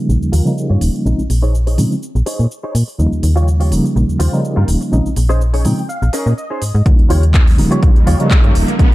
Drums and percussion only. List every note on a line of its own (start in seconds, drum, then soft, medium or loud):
0.10 cabasa soft
0.22 cabasa soft
0.33 open hi-hat medium
0.33 cabasa medium
0.47 cabasa soft
0.58 cabasa soft
0.81 open hi-hat medium
0.81 cabasa medium
0.95 cabasa soft
1.06 cabasa soft
1.19 cabasa soft
1.30 open hi-hat loud
1.30 cabasa medium
1.43 cabasa soft
1.55 cabasa soft
1.67 open hi-hat medium
1.78 open hi-hat medium
1.78 cabasa medium
1.92 cabasa soft
2.03 cabasa soft
2.16 cabasa soft
2.26 open hi-hat loud
2.26 cabasa medium
2.40 cabasa soft
2.51 cabasa soft
2.75 open hi-hat loud
2.75 cabasa medium
2.89 cabasa soft
3.00 cabasa soft
3.12 cabasa soft
3.23 open hi-hat loud
3.23 cabasa medium
3.37 cabasa soft
3.48 cabasa soft
3.61 open hi-hat medium
3.72 open hi-hat loud
3.72 cabasa medium
3.85 cabasa soft
3.97 cabasa soft
4.09 cabasa soft
4.20 open hi-hat loud
4.20 cabasa medium
4.34 cabasa soft
4.45 cabasa soft
4.68 open hi-hat loud
4.68 cabasa medium
4.82 cabasa soft
4.93 cabasa soft
5.06 cabasa soft
5.16 open hi-hat loud
5.16 cabasa medium
5.30 cabasa soft
5.41 cabasa soft
5.54 open hi-hat medium
5.65 open hi-hat loud
5.65 cabasa medium
5.78 cabasa soft
5.90 cabasa soft
6.03 cabasa soft
6.13 open hi-hat loud
6.13 cabasa medium
6.27 cabasa soft
6.38 cabasa soft
6.62 open hi-hat loud
6.62 cabasa medium
6.75 cabasa soft
6.86 kick loud
6.86 closed hi-hat medium
6.99 closed hi-hat soft
7.10 open hi-hat medium
7.23 closed hi-hat medium
7.34 kick loud
7.34 clap loud
7.34 closed hi-hat medium
7.47 open hi-hat medium
7.58 open hi-hat loud
7.72 closed hi-hat medium
7.83 kick loud
7.83 closed hi-hat medium
7.96 closed hi-hat soft
8.07 open hi-hat loud
8.20 closed hi-hat medium
8.31 kick loud
8.31 clap loud
8.31 closed hi-hat medium
8.44 closed hi-hat soft
8.55 open hi-hat loud
8.68 closed hi-hat soft
8.79 kick loud
8.79 closed hi-hat medium